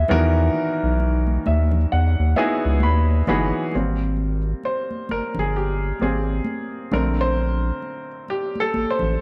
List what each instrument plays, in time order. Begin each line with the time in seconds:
Already playing: upright piano B3 E4 F#4 G#4, clean electric guitar E5
0.08 analog synth bass E2, upright piano D#3 E3 B3 F#4 A#4, low conga
0.54 muted conga
0.83 analog synth bass B1
1.00 muted conga
1.27 high conga
1.46 analog synth bass D#2, upright piano E5, high conga
1.71 low conga
1.92 analog synth bass E2, upright piano F#5
2.19 analog synth bass D#2
2.36 upright piano B3 D#4 E4 F#4 G#4 G#5, high conga
2.65 analog synth bass C#2
2.80 analog synth bass D#2, upright piano B5, muted conga, high conga
3.27 analog synth bass G1, upright piano E3 B3 D#4 F#4 G#4 B5, muted conga, high conga, low conga
3.71 analog synth bass G#1, upright piano G3 A#3 C4, muted conga
4.17 muted conga
4.63 upright piano C5, muted conga
4.91 high conga
5.09 analog synth bass G1, upright piano A#4, muted conga, high conga
5.35 analog synth bass G1, low conga
5.39 upright piano G#4
5.56 upright piano G4
6.00 analog synth bass G#1, upright piano A#3 C4 G4 G#4, high conga
6.44 muted conga, high conga
6.92 analog synth bass A#1, upright piano D3 A3 C4 A#4, muted conga, high conga, low conga
7.21 upright piano C5
7.36 muted conga
7.82 muted conga
8.28 upright piano G4, muted conga
8.55 high conga
8.60 upright piano A4
8.74 analog synth bass A1, muted conga, high conga
8.90 upright piano C5
8.99 analog synth bass A1, low conga